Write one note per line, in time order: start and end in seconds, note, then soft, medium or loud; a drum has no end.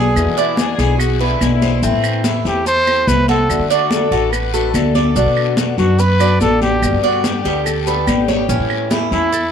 0.00 0.14 B1 loud
0.00 0.15 D3 soft
0.00 0.16 B3 soft
0.00 0.16 D4 medium
0.00 0.16 F#4 medium
0.00 0.36 G#4 medium
0.00 0.37 G#4 medium
0.16 0.25 E2 medium
0.16 0.57 B2 medium
0.16 0.56 D3 medium
0.16 0.57 G#3 medium
0.16 0.58 B3 medium
0.16 0.58 E4 medium
0.16 high conga soft
0.16 long guiro medium
0.16 claves medium
0.16 maracas medium
0.26 0.76 E3 medium
0.37 0.78 D4 medium
0.37 0.57 E4 medium
0.37 high conga soft
0.37 maracas medium
0.57 0.78 D3 soft
0.57 0.78 G#3 medium
0.57 0.78 B3 medium
0.57 0.77 E4 medium
0.57 1.00 G#4 loud
0.57 high conga medium
0.57 short guiro medium
0.57 maracas medium
0.78 1.38 B1 loud
0.78 0.99 D3 medium
0.78 0.99 G#3 medium
0.78 0.99 B3 medium
0.78 0.99 E4 medium
0.78 1.19 G#4 medium
0.78 high conga soft
0.78 short guiro medium
0.78 maracas soft
0.99 1.19 F#4 medium
0.99 muted steel-string acoustic guitar stroke medium
0.99 high conga soft
0.99 long guiro medium
0.99 claves medium
0.99 maracas medium
1.20 1.40 D3 medium
1.20 1.40 G#3 medium
1.20 1.41 B3 medium
1.20 1.40 E4 medium
1.20 2.04 E4 medium
1.20 1.61 B4 medium
1.20 high conga soft
1.41 1.81 B1 medium
1.41 1.82 D3 medium
1.41 1.82 G#3 medium
1.41 1.83 B3 medium
1.41 1.83 E4 medium
1.41 high conga medium
1.41 short guiro medium
1.41 claves medium
1.41 maracas medium
1.62 1.82 C5 medium
1.62 high conga medium
1.62 short guiro medium
1.62 maracas soft
1.82 1.92 A1 loud
1.82 2.23 E3 medium
1.82 2.24 A3 medium
1.82 2.23 C4 medium
1.82 2.24 C4 medium
1.82 2.24 E4 medium
1.82 high conga soft
1.82 long guiro medium
1.82 maracas medium
1.93 2.42 A2 medium
2.04 high conga soft
2.04 claves medium
2.04 maracas medium
2.24 2.44 E3 medium
2.24 2.45 A3 medium
2.24 2.44 C4 medium
2.24 2.65 E4 medium
2.24 2.44 E4 medium
2.24 high conga medium
2.24 short guiro medium
2.24 maracas medium
2.45 3.05 E2 loud
2.45 2.65 A3 medium
2.45 2.65 C4 medium
2.45 2.65 E4 medium
2.45 2.66 G4 medium
2.45 high conga soft
2.45 short guiro medium
2.45 maracas soft
2.66 2.87 A4 medium
2.66 3.10 C5 loud
2.66 muted steel-string acoustic guitar stroke medium
2.66 high conga soft
2.66 long guiro medium
2.66 maracas medium
2.87 3.07 A3 medium
2.87 3.07 C4 medium
2.87 3.07 E4 medium
2.87 3.28 C5 medium
2.87 high conga soft
2.87 claves medium
3.07 3.47 C2 loud
3.07 3.49 E3 soft
3.07 3.49 A3 soft
3.07 3.49 C4 soft
3.07 3.49 E4 medium
3.07 3.28 B4 medium
3.07 high conga medium
3.07 short guiro medium
3.07 maracas medium
3.28 3.69 F#4 medium
3.28 3.67 A4 medium
3.28 high conga medium
3.28 short guiro medium
3.28 maracas soft
3.49 3.59 D2 loud
3.49 3.90 D3 medium
3.49 3.91 A3 medium
3.49 3.91 D4 medium
3.49 3.91 F#4 medium
3.49 high conga soft
3.49 long guiro medium
3.49 claves medium
3.49 maracas medium
3.59 4.09 D3 medium
3.70 4.11 D4 medium
3.70 3.90 F#4 medium
3.70 high conga soft
3.70 maracas medium
3.91 4.11 D3 soft
3.91 4.11 A3 soft
3.91 4.12 D4 soft
3.91 4.11 F#4 medium
3.91 4.33 A4 loud
3.91 high conga medium
3.91 short guiro medium
3.91 maracas medium
4.11 4.71 A1 medium
4.11 4.32 A3 medium
4.11 4.32 D4 medium
4.11 4.52 F#4 medium
4.11 4.32 F#4 medium
4.11 high conga soft
4.11 short guiro medium
4.11 maracas soft
4.33 4.74 B4 medium
4.33 muted steel-string acoustic guitar stroke medium
4.33 high conga soft
4.33 long guiro medium
4.33 claves medium
4.33 maracas medium
4.54 4.74 A3 medium
4.54 4.74 D4 medium
4.54 4.74 F#4 medium
4.54 4.94 A4 medium
4.54 high conga soft
4.54 maracas medium
4.74 5.14 D2 loud
4.74 5.15 D3 soft
4.74 5.16 A3 soft
4.74 5.16 D4 medium
4.74 5.16 F#4 soft
4.74 5.58 A4 medium
4.74 high conga medium
4.74 short guiro medium
4.74 claves medium
4.74 maracas medium
4.95 5.15 D5 medium
4.95 high conga medium
4.95 short guiro medium
4.95 maracas soft
5.15 5.25 B1 loud
5.15 5.57 B2 medium
5.15 5.56 D3 medium
5.15 5.57 B3 medium
5.15 5.57 D4 medium
5.15 5.58 F#4 medium
5.15 high conga soft
5.15 long guiro medium
5.15 maracas medium
5.26 5.76 B2 medium
5.36 high conga soft
5.36 claves medium
5.57 5.78 D3 medium
5.57 5.77 B3 medium
5.57 5.77 D4 medium
5.57 5.98 F#4 medium
5.57 5.76 F#4 medium
5.57 high conga medium
5.57 short guiro medium
5.57 maracas medium
5.78 6.38 F#2 loud
5.78 5.99 D3 medium
5.78 5.99 B3 medium
5.78 5.98 D4 medium
5.78 5.98 F#4 medium
5.78 6.02 F#4 medium
5.78 high conga soft
5.78 short guiro medium
5.78 maracas soft
5.99 6.20 B4 medium
5.99 6.41 B4 loud
5.99 muted steel-string acoustic guitar stroke medium
5.99 high conga soft
5.99 long guiro medium
5.99 maracas medium
6.20 6.39 D3 medium
6.20 6.40 B3 medium
6.20 6.40 D4 medium
6.20 6.40 F#4 medium
6.20 6.61 D5 medium
6.20 high conga soft
6.20 claves medium
6.20 maracas medium
6.40 6.80 A1 loud
6.40 6.82 D3 medium
6.40 6.82 B3 soft
6.40 6.82 D4 medium
6.40 6.82 F#4 medium
6.40 6.61 A4 medium
6.40 high conga medium
6.40 short guiro medium
6.40 maracas medium
6.62 7.01 G4 medium
6.62 high conga medium
6.62 short guiro medium
6.62 maracas soft
6.82 6.92 G1 medium
6.82 7.23 B2 medium
6.82 7.23 D3 medium
6.82 7.23 G3 medium
6.82 7.24 B3 medium
6.82 7.24 G4 medium
6.82 high conga soft
6.82 long guiro medium
6.82 claves medium
6.82 maracas medium
6.93 7.42 G2 medium
7.03 7.44 D4 medium
7.03 7.23 F#4 medium
7.03 high conga soft
7.24 7.44 D3 soft
7.24 7.45 G3 medium
7.24 7.44 B3 medium
7.24 7.66 G4 medium
7.24 7.44 G4 medium
7.24 high conga medium
7.24 short guiro medium
7.24 maracas medium
7.45 8.04 D2 medium
7.45 7.65 D3 medium
7.45 7.65 G3 medium
7.45 7.65 B3 medium
7.45 7.65 G4 medium
7.45 7.86 G4 medium
7.45 high conga soft
7.45 short guiro medium
7.45 maracas soft
7.66 8.05 A4 medium
7.66 muted steel-string acoustic guitar stroke medium
7.66 high conga soft
7.66 long guiro medium
7.66 claves medium
7.66 maracas medium
7.87 8.06 D3 medium
7.87 8.07 G3 medium
7.87 8.07 B3 medium
7.87 8.07 G4 medium
7.87 8.27 B4 medium
7.87 high conga soft
7.87 maracas medium
8.07 8.47 G#1 medium
8.07 8.48 D3 medium
8.07 8.49 G3 soft
8.07 8.49 B3 medium
8.07 8.91 G4 medium
8.07 8.49 G4 medium
8.07 high conga medium
8.07 short guiro medium
8.07 claves medium
8.07 maracas medium
8.28 8.49 C#5 medium
8.28 high conga medium
8.28 short guiro medium
8.28 maracas soft
8.49 8.59 A1 loud
8.49 8.89 E3 medium
8.49 8.90 A3 medium
8.49 8.90 C#4 medium
8.49 8.91 E4 medium
8.49 high conga soft
8.49 long guiro medium
8.49 maracas medium
8.70 high conga soft
8.70 claves medium
8.90 9.11 E3 soft
8.90 9.11 A3 medium
8.90 9.11 C#4 medium
8.90 9.31 E4 medium
8.90 9.10 E4 medium
8.90 high conga medium
8.90 short guiro medium
8.90 maracas medium
9.11 9.52 E2 loud
9.11 9.31 A3 medium
9.11 9.31 C#4 medium
9.11 9.32 E4 medium
9.11 9.51 E4 medium
9.11 high conga soft
9.11 short guiro medium
9.11 maracas soft
9.32 9.52 A4 medium
9.32 muted steel-string acoustic guitar stroke medium
9.32 high conga soft
9.32 long guiro medium
9.32 maracas medium